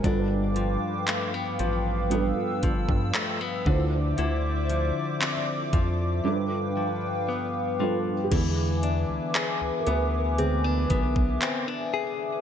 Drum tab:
CC |----------------|----------------|x---------------|
HH |x-x-x-x-x-x-x---|x-x-x-x---------|x-x-x-x-x-x-x---|
CP |----x-------x---|----x-----------|----x-------x---|
BD |o---------oo--o-|------o---------|o---------oo----|